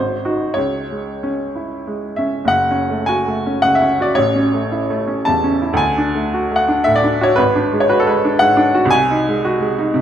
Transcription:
Already playing: G#1 C5
0.25 D#4 F#4
0.54 C#2 C#5
0.91 G#3
1.23 C#4
1.55 E4
1.87 G#3
2.16 C#4 E5
2.45 F#1 F#5
2.71 C#4
2.90 A3
3.06 F#4 G#5
3.28 A3
3.46 C#4
3.62 C#2 F#5
3.75 E5
3.81 C#4
4.00 F#4 D5
4.15 A1 C#5
4.36 C#4
4.54 A3
4.72 E4
4.90 A3
5.07 C#4
5.25 E2 A5
5.44 C#4
5.62 E4
5.73 D2 G#5
5.98 D4
6.15 A3
6.33 F#4
6.51 A3
6.56 F#5
6.68 D4
6.84 A2 E5
6.96 D5
7.04 D4
7.21 F#4 C#5
7.36 G#1 B4
7.56 D4
7.73 G#3
7.80 C#5
7.89 F#4 B4
8.00 A4
8.07 G#3 B4
8.25 D4
8.39 G#2 F#5
8.57 D4
8.75 F#4
8.85 C2
8.90 G#5
9.11 D#4
9.28 G#3
9.45 F#4
9.60 G#3
9.78 D#4
9.94 C3

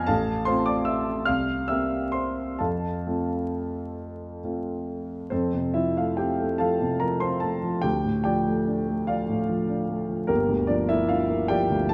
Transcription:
Already playing: F2 B3 D4 F4 F5 G#5 A#5 F6 G#6 A#6
0.06 A1 A4 F5 A5
0.45 A3 C4 F4 C5 C6
0.66 D5 D6
0.85 E5 E6
1.25 C2 F5 F6
1.68 A#3 C4 G4 E5 E6
2.12 C5 C6
2.59 F2 A4 F5 A5
3.07 A3 C4 F4
4.43 A3 C4 F4
5.30 F2 C4 A4 C5
5.54 C3
5.74 F3 E4 E5
5.97 A3 F4 F5
6.17 C4 G4 G5
6.40 A3
6.58 F3 A4 F5 A5
6.81 C3
7.00 F3 A#4 A#5
7.20 C4 C5 C6
7.40 A3 A4 A5
7.63 F3
7.82 D2 G4 G5
8.04 A2
8.24 F3 G4 D5 G5
8.47 A3
8.67 D4
8.88 A3
9.07 F3 F4 D5 F5
9.29 A2
9.49 F3
9.69 D4
9.89 A3
10.09 F3
10.27 G1 A#3 G4 A#4
10.49 D2
10.67 F3 D4 D5
10.89 A#3 E4 E5
11.09 D4 F4 F5
11.30 A#3
11.48 F3 G4 D5 G5
11.70 D2
11.89 F3 A4 A5

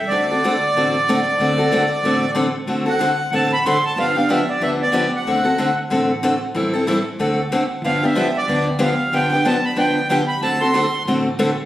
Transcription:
0.08 D2 D3 A3 C4 D5
0.12 F#4 A4
0.31 C4 F#4 A4
0.44 D3 A3 C4 F#4 A4
0.75 A1 D3 A3 C4 F#4 A4
1.09 D3 A3 C4 F#4 A4
1.38 D2 D3 A3 C4 F#4 A4
1.58 C4 F#4 A4
1.72 D3 A3 C4 F#4 A4
2.03 A1 D3 A3 C4 F#4 A4
2.35 D3 A3 C4 F#4 A4
2.67 D2 D3 A3 C4 F#4 A4
2.86 C4 F#4 A4 F#5
2.99 D3 A3 C4 F#4 A4
3.32 A1 D3 A3 C4 F#4 A4 A5
3.53 B5
3.65 D3 A3 C4 F#4 A4 C6
3.85 A5
3.96 G1 D3 F3 B3 D4 G4 F5
4.16 B3 D4 G4 F5
4.29 D3 F3 B3 D4 G4 E5
4.49 D5
4.61 D2 D3 F3 B3 D4 G4 E5
4.82 D5
4.92 D3 F3 B3 D4 G4
5.16 F#5
5.25 D2 D3 A3 C4 F#4 A4
5.44 C4 F#4 A4
5.58 D3 A3 C4 F#4 A4
5.90 A1 D3 A3 C4 F#4 A4
6.23 D3 A3 C4 F#4 A4
6.55 A1 E3 G3 C4 E4 A4
6.74 C4 E4 A4
6.87 E3 G3 C4 E4 A4
7.19 D2 D3 A3 C4 F#4 A4
7.52 D3 A3 C4 F#4 A4
7.82 G1 D3 F3 B3 D4 G4 F5
8.03 B3 D4 G4 E5
8.15 D3 F3 B3 D4 G4
8.37 D5
8.48 D2 D3 F3 B3 D4 G4
8.79 D3 F3 B3 D4 G4 F5
9.12 G1 D3 F3 B3 D4 G4 G5
9.32 B3 D4 G4
9.45 D3 F3 B3 D4 G4 A5
9.65 B5
9.76 D2 D3 F3 B3 D4 G4 G5
10.09 D3 F3 B3 D4 G4 G5
10.28 B5
10.41 D2 D3 A3 C4 F#4 A4 A5
10.61 C4 F#4 A4 C6
10.74 D3 A3 C4 F#4 A4
11.05 A1 D3 A3 C4 F#4 A4
11.39 D3 A3 C4 F#4 A4

